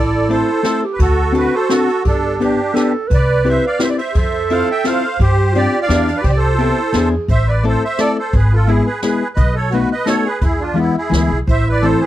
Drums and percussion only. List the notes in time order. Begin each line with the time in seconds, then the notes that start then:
0.30 ride
0.64 snare, ride
1.00 kick, ride
1.34 ride
1.70 snare, ride
1.90 ride
2.05 kick, ride
2.41 ride
2.76 snare, ride
3.11 kick, ride
3.46 ride
3.80 snare, ride
3.99 ride
4.15 kick, ride
4.50 ride
4.85 snare, ride
5.20 kick, ride
5.55 ride
5.90 snare, ride
6.08 ride
6.24 kick, ride
6.59 ride
6.93 snare, ride
7.29 kick, closed hi-hat
7.64 closed hi-hat
7.98 snare, closed hi-hat
8.32 kick, closed hi-hat
8.68 closed hi-hat
9.02 snare, closed hi-hat
9.37 kick, closed hi-hat
9.72 closed hi-hat
10.07 snare, closed hi-hat
10.41 kick, closed hi-hat
10.77 closed hi-hat
11.13 snare, closed hi-hat
11.48 kick, closed hi-hat
11.83 closed hi-hat